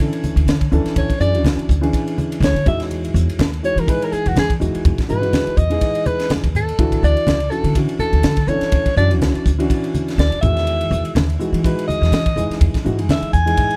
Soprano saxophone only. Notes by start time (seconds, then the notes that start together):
0.98 C#5
1.21 D5
2.44 C#5
2.68 E5
3.65 C#5
3.79 A#4
3.90 B4
4.04 A#4
4.12 G#4
4.28 F#4
4.39 G#4
5.10 B4
5.57 D#5
6.06 B4
6.56 A4
7.04 D5
7.51 A4
8.00 A4
8.48 C#5
8.97 D5
10.19 D5
10.41 E5
11.65 B4
11.88 D#5
13.11 E5
13.33 G#5